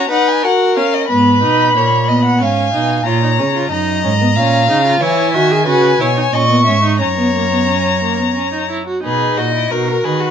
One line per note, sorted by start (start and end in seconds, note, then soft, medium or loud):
0.00 0.10 C#4 medium
0.10 0.45 D#4 medium
0.10 0.45 B4 medium
0.10 0.29 F#5 medium
0.28 0.46 G#5 medium
0.43 0.79 F#4 medium
0.43 1.10 A#4 medium
0.43 0.76 F#5 medium
0.77 1.10 C#4 medium
0.77 0.95 F5 medium
0.94 1.09 D#5 medium
1.10 1.45 G#2 medium
1.10 1.41 B3 medium
1.10 1.78 B4 medium
1.10 2.37 B5 medium
1.43 1.76 B2 medium
1.43 1.75 D#4 medium
1.76 2.43 A#2 medium
1.76 2.10 A#3 medium
1.76 2.10 C#5 medium
2.08 2.42 B3 medium
2.08 2.25 D#5 medium
2.25 2.43 F#5 medium
2.41 2.73 G#2 medium
2.41 2.73 C#4 medium
2.41 3.08 F5 medium
2.41 3.05 G#5 medium
2.74 3.05 B2 medium
2.74 3.06 D#4 medium
3.06 3.41 A#2 medium
3.06 3.23 F4 medium
3.06 3.70 C#5 medium
3.06 3.70 A#5 medium
3.23 3.30 D#4 medium
3.39 3.71 C#3 medium
3.39 3.46 C#4 medium
3.55 3.71 F4 medium
3.71 4.05 F#2 medium
3.71 4.04 D#4 medium
3.71 4.38 D#5 medium
3.71 4.99 A#5 medium
4.04 4.37 G#2 medium
4.04 4.11 C#4 medium
4.21 4.27 B3 medium
4.36 4.70 A#2 medium
4.36 4.69 C#4 medium
4.36 5.03 F5 medium
4.68 5.00 C#3 medium
4.68 4.85 D#4 medium
4.85 5.03 F4 medium
5.01 5.36 E3 medium
5.01 5.36 E4 medium
5.01 5.33 C#5 medium
5.01 6.36 G#5 medium
5.34 5.68 D#3 medium
5.34 5.53 F#4 medium
5.34 5.66 E5 medium
5.51 5.66 G#4 medium
5.67 6.00 C#3 medium
5.67 5.99 F#4 medium
5.67 6.02 B4 medium
6.00 6.33 B2 medium
6.00 6.06 E4 medium
6.00 6.35 C#5 medium
6.17 6.23 D#4 medium
6.33 6.69 A#2 medium
6.33 6.49 C#4 medium
6.33 6.65 D#5 medium
6.33 7.00 C#6 medium
6.50 6.66 B3 medium
6.66 7.02 G#2 medium
6.66 6.82 C#4 medium
6.66 7.00 E5 medium
6.83 7.00 D#4 medium
7.00 8.71 F#2 medium
7.00 7.07 C#4 medium
7.00 8.68 C#5 medium
7.00 8.68 A#5 medium
7.17 7.34 B3 medium
7.35 7.51 A#3 medium
7.52 7.68 B3 medium
7.69 8.02 C#4 medium
8.04 8.21 A#3 medium
8.19 8.36 B3 medium
8.37 8.53 C#4 medium
8.53 8.70 D#4 medium
8.70 8.87 E4 medium
8.87 9.03 F#4 medium
9.03 9.36 B2 medium
9.03 9.67 D#4 medium
9.03 9.39 G#4 medium
9.03 9.39 B4 medium
9.38 9.71 A#2 medium
9.38 9.54 F#4 medium
9.38 9.73 D#5 medium
9.55 9.73 E4 medium
9.71 10.04 B2 medium
9.71 9.90 D#4 medium
9.71 10.31 F#4 medium
9.71 10.06 A#4 medium
9.88 10.06 A#4 medium
10.04 10.31 D#3 medium
10.04 10.22 G#4 medium
10.04 10.31 B4 medium
10.21 10.31 F#4 medium